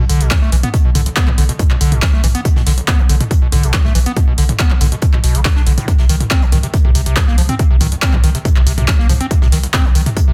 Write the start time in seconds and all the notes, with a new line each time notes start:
0.09 B1 D3, closed hi-hat, open hi-hat
0.20 B1 B2, closed hi-hat
0.31 E3, kick, snare, clap, closed hi-hat, mid tom
0.42 B1 A3, snare
0.52 B1 E3, closed hi-hat, open hi-hat
0.63 B3, closed hi-hat, mid tom
0.74 B2, kick, closed hi-hat
0.85 B1 B2
0.95 B1 D3, closed hi-hat, mid tom, open hi-hat
1.06 B1, closed hi-hat
1.16 B3, kick, snare, clap, closed hi-hat
1.28 B1 B2, clap, mid tom
1.38 B1 D3, closed hi-hat, open hi-hat
1.49 B2, closed hi-hat
1.59 B2, kick, closed hi-hat, mid tom
1.70 B1 B2, clap
1.81 B1 D3, closed hi-hat, open hi-hat
1.92 B1 B2, closed hi-hat, mid tom
2.02 E3, kick, snare, clap, closed hi-hat, open hi-hat
2.13 B1 A3, snare
2.23 B1 E3, closed hi-hat, mid tom, open hi-hat
2.35 B3, closed hi-hat
2.45 B2, kick, closed hi-hat
2.56 B1 B2, snare, mid tom
2.66 B1 D3, snare, closed hi-hat, open hi-hat
2.78 B1, closed hi-hat
2.87 B3, kick, snare, clap, closed hi-hat, mid tom
2.99 B1 B2, closed hi-hat
3.09 B1 D3, closed hi-hat, open hi-hat
3.21 B2, closed hi-hat, mid tom
3.31 B2, kick, closed hi-hat
3.42 B1 B2
3.52 B1 D3, closed hi-hat, mid tom, open hi-hat
3.63 B1 B2, closed hi-hat
3.73 E3, kick, snare, clap, closed hi-hat
3.85 B1 A3, snare, mid tom
3.95 B1 E3, closed hi-hat, open hi-hat
4.06 B3, closed hi-hat
4.17 B2, kick, closed hi-hat, mid tom
4.28 B1 B2
4.38 B1 D3, closed hi-hat, open hi-hat
4.49 B1, closed hi-hat, mid tom
4.59 B3, kick, snare, clap, closed hi-hat
4.71 B1 B2, clap
4.81 B1 D3, closed hi-hat, mid tom, open hi-hat
4.92 B2, closed hi-hat
5.02 B2, kick, closed hi-hat
5.13 B1 B2, clap, mid tom
5.24 B1 B2, closed hi-hat, open hi-hat
5.35 B1 D3, closed hi-hat
5.45 D3, kick, snare, clap, closed hi-hat, mid tom, open hi-hat
5.56 B1 D4, snare
5.67 B1 D3, closed hi-hat, open hi-hat
5.78 A2, closed hi-hat, mid tom
5.88 C3, kick, closed hi-hat, mid tom
5.98 C2 C3, snare
6.09 C2 D#3, snare, closed hi-hat, open hi-hat
6.20 C2, closed hi-hat, mid tom
6.30 C4, kick, snare, clap, closed hi-hat
6.42 C2 C3, closed hi-hat
6.52 C2 D#3, closed hi-hat, mid tom, open hi-hat
6.63 C3, closed hi-hat
6.74 C3, kick, closed hi-hat
6.85 C2 C3, mid tom
6.95 C2 C3, closed hi-hat, open hi-hat
7.06 C2 C3, closed hi-hat
7.17 F3, kick, snare, clap, closed hi-hat, mid tom
7.28 C2 A#3, snare
7.38 C2 F3, closed hi-hat, open hi-hat
7.49 C4, closed hi-hat, mid tom
7.59 C3, kick, closed hi-hat
7.71 C2 C3
7.80 C2 D#3, closed hi-hat, mid tom, open hi-hat
7.92 C2, closed hi-hat
8.02 C4, kick, snare, clap, closed hi-hat
8.13 C2 C3, clap, mid tom
8.23 C2 D#3, closed hi-hat, open hi-hat
8.35 C3, closed hi-hat
8.45 C3, kick, closed hi-hat, mid tom
8.56 C2 C3, clap
8.66 C2 C3, closed hi-hat, open hi-hat
8.78 C2 C3, closed hi-hat, mid tom
8.88 F3, kick, snare, clap, closed hi-hat, open hi-hat
8.99 C2 A#3, snare
9.09 C2 F3, closed hi-hat, mid tom, open hi-hat
9.20 C4, closed hi-hat
9.31 C3, kick, closed hi-hat
9.42 C2 C3, snare, mid tom
9.52 C2 D#3, snare, closed hi-hat, open hi-hat
9.63 C2, closed hi-hat
9.73 C4, kick, snare, clap, closed hi-hat, mid tom
9.85 C2 C3, closed hi-hat
9.95 C2 D#3, closed hi-hat, open hi-hat
10.06 C3, closed hi-hat, mid tom
10.16 C3, kick, closed hi-hat
10.28 C2 C3